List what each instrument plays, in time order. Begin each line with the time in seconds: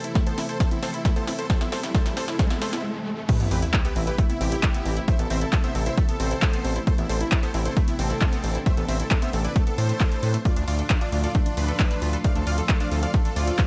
Already playing: string section C3 E3 A3 C4 A4, riser
0.04 synth pluck E4, supersaw synth E4, closed hi-hat
0.15 synth pluck A3, supersaw synth E4, kick, snare, closed hi-hat
0.27 synth pluck B3, supersaw synth A4 C5, closed hi-hat
0.38 synth pluck C4, supersaw synth E4, snare, open hi-hat
0.49 synth pluck E4, supersaw synth A4 C5, closed hi-hat
0.60 synth pluck A3, supersaw synth A4 C5, kick, snare, closed hi-hat
0.71 synth pluck B3, supersaw synth E4, closed hi-hat
0.83 synth pluck C4, supersaw synth A4 C5, snare, open hi-hat
0.94 synth pluck E4, supersaw synth E4, closed hi-hat
1.05 synth pluck A3, supersaw synth E4, kick, snare, closed hi-hat
1.16 synth pluck B3, supersaw synth A4 C5, closed hi-hat
1.27 synth pluck C4, supersaw synth E4, snare, open hi-hat
1.39 synth pluck E4, supersaw synth A4 C5, closed hi-hat
1.50 synth pluck A3, supersaw synth A4 C5, kick, snare, closed hi-hat
1.61 synth pluck B3, supersaw synth E4, snare, closed hi-hat
1.72 synth pluck C4, supersaw synth A4 C5, snare, open hi-hat
1.83 supersaw synth E4, synth pluck E4, snare, closed hi-hat
1.94 synth pluck A3, supersaw synth A4 C5, kick, snare, closed hi-hat
2.06 synth pluck B3, supersaw synth E4, snare, closed hi-hat
2.17 synth pluck C4, supersaw synth A4 C5, snare, open hi-hat
2.28 synth pluck E4, supersaw synth E4, snare, closed hi-hat
2.39 synth pluck A3, supersaw synth A4 C5, kick, snare, closed hi-hat
2.50 synth pluck B3, supersaw synth E4, snare, closed hi-hat
2.62 synth pluck A3, supersaw synth A4 C5, snare, open hi-hat
2.73 synth pluck B3, supersaw synth E4, snare, closed hi-hat
3.29 string section C3 E3 A3 C4 E4, synth pluck A3, supersaw synth G4 B4, kick, closed hi-hat, crash, sub drop
3.40 analog synth bass A1, synth pluck B3, supersaw synth E4, closed hi-hat
3.51 analog synth bass A1, synth pluck C4, supersaw synth G4 B4, open hi-hat
3.62 supersaw synth E4, synth pluck E4, closed hi-hat
3.73 synth pluck A3, supersaw synth E4, kick, clap, closed hi-hat
3.85 synth pluck B3, supersaw synth G4 B4, closed hi-hat
3.96 analog synth bass A1, synth pluck C4, supersaw synth E4, open hi-hat
4.07 synth pluck E4, supersaw synth G4 B4, closed hi-hat
4.18 synth pluck A3, supersaw synth E4, kick, closed hi-hat
4.30 synth pluck B3, supersaw synth E4, closed hi-hat
4.41 analog synth bass A1, synth pluck C4, supersaw synth E4 G4, open hi-hat
4.52 synth pluck E4, closed hi-hat
4.63 synth pluck A3, kick, clap, closed hi-hat
4.74 synth pluck B3, closed hi-hat
4.86 analog synth bass A1, synth pluck C4, open hi-hat
4.97 synth pluck E4, closed hi-hat
5.08 synth pluck A3, supersaw synth C5 E5, kick, closed hi-hat
5.19 analog synth bass A1, synth pluck B3, supersaw synth A4, closed hi-hat
5.30 analog synth bass A1, synth pluck C4, supersaw synth C5 E5, open hi-hat
5.41 synth pluck E4, supersaw synth A4, closed hi-hat
5.53 synth pluck A3, supersaw synth A4, kick, clap, closed hi-hat
5.64 synth pluck B3, supersaw synth C5 E5, closed hi-hat
5.75 analog synth bass A1, synth pluck C4, supersaw synth A4, open hi-hat
5.86 synth pluck E4, supersaw synth C5 E5, closed hi-hat
5.97 synth pluck A3, supersaw synth A4, kick, closed hi-hat
6.09 synth pluck B3, supersaw synth A4, closed hi-hat
6.20 analog synth bass A1, synth pluck C4, supersaw synth A4 C5, open hi-hat
6.31 synth pluck E4, closed hi-hat
6.42 synth pluck A3, kick, clap, closed hi-hat
6.53 synth pluck B3, closed hi-hat
6.65 analog synth bass A1, synth pluck C4, open hi-hat
6.76 synth pluck E4, closed hi-hat
6.87 synth pluck A3, string section D4, supersaw synth A4 C5, kick, closed hi-hat
6.98 analog synth bass A1, synth pluck B3, supersaw synth E4, closed hi-hat
7.09 analog synth bass A1, synth pluck C4, supersaw synth A4 C5, open hi-hat
7.21 supersaw synth E4, synth pluck E4, closed hi-hat
7.32 synth pluck A3, supersaw synth E4, kick, clap, closed hi-hat
7.43 synth pluck B3, supersaw synth A4 C5, closed hi-hat
7.54 analog synth bass A1, synth pluck C4, supersaw synth E4, open hi-hat
7.65 synth pluck E4, supersaw synth A4 C5, closed hi-hat
7.77 synth pluck A3, supersaw synth E4, kick, closed hi-hat
7.88 synth pluck B3, supersaw synth E4, closed hi-hat
7.99 analog synth bass A1, synth pluck C4, supersaw synth C4 A4, open hi-hat
8.10 synth pluck E4, closed hi-hat
8.21 synth pluck A3, kick, clap, closed hi-hat
8.33 synth pluck B3, closed hi-hat
8.44 analog synth bass A1, synth pluck C4, open hi-hat
8.55 synth pluck E4, closed hi-hat
8.66 synth pluck A3, supersaw synth C5 E5, kick, closed hi-hat
8.77 analog synth bass A1, synth pluck B3, supersaw synth A4, closed hi-hat
8.88 analog synth bass A1, synth pluck C4, supersaw synth C5 E5, open hi-hat
9.00 synth pluck E4, supersaw synth A4, closed hi-hat
9.11 synth pluck A3, supersaw synth A4, kick, clap, closed hi-hat
9.22 synth pluck B3, supersaw synth C5 E5, closed hi-hat
9.33 analog synth bass A1, synth pluck C4, supersaw synth A4, open hi-hat
9.44 synth pluck E4, supersaw synth B4 D5, closed hi-hat
9.56 synth pluck A3, supersaw synth A4, kick, closed hi-hat
9.67 synth pluck B3, supersaw synth A4, closed hi-hat
9.78 analog synth bass A2, synth pluck A3, supersaw synth A4 C5, open hi-hat
9.89 synth pluck A3, closed hi-hat
10.00 synth pluck A4, kick, clap, closed hi-hat
10.12 synth pluck E4, closed hi-hat
10.23 analog synth bass A2, synth pluck B4, open hi-hat
10.34 synth pluck A3, closed hi-hat
10.45 string section A2 D3 F3 F4, synth pluck A3, supersaw synth F4 D5, kick, closed hi-hat
10.56 analog synth bass D2, supersaw synth D4, synth pluck D4, closed hi-hat
10.68 analog synth bass D2, supersaw synth F4 D5, synth pluck F4, open hi-hat
10.79 supersaw synth D4, synth pluck A4, closed hi-hat
10.90 synth pluck A3, supersaw synth D4, kick, clap, closed hi-hat
11.01 synth pluck D4, supersaw synth F4 D5, closed hi-hat
11.12 analog synth bass D2, supersaw synth D4, synth pluck F4, open hi-hat
11.24 supersaw synth F4 D5, synth pluck A4, closed hi-hat
11.35 synth pluck A3, supersaw synth D4, kick, closed hi-hat
11.46 synth pluck D4, supersaw synth D4, closed hi-hat
11.57 analog synth bass D2, supersaw synth D4 B4, synth pluck F4, open hi-hat
11.68 synth pluck A4, closed hi-hat
11.80 synth pluck A3, kick, clap, closed hi-hat
11.91 synth pluck D4, closed hi-hat
12.02 analog synth bass D2, synth pluck F4, open hi-hat
12.13 synth pluck A4, closed hi-hat
12.24 synth pluck A3, string section C4, supersaw synth D5 F5, kick, closed hi-hat
12.36 analog synth bass D2, synth pluck D4, supersaw synth A4, closed hi-hat
12.47 analog synth bass D2, synth pluck F4, supersaw synth D5 F5, open hi-hat
12.58 synth pluck A4, supersaw synth A4, closed hi-hat
12.69 synth pluck A3, supersaw synth A4, kick, clap, closed hi-hat
12.80 synth pluck D4, supersaw synth D5 F5, closed hi-hat
12.91 analog synth bass D2, synth pluck F4, supersaw synth A4, open hi-hat
13.03 synth pluck A4, supersaw synth D5 F5, closed hi-hat
13.14 synth pluck A3, supersaw synth A4, kick, closed hi-hat
13.25 synth pluck D4, supersaw synth A4, closed hi-hat
13.36 analog synth bass D2, synth pluck F4, supersaw synth F4 D5, open hi-hat
13.47 synth pluck A4, closed hi-hat
13.59 synth pluck A3, kick, clap, closed hi-hat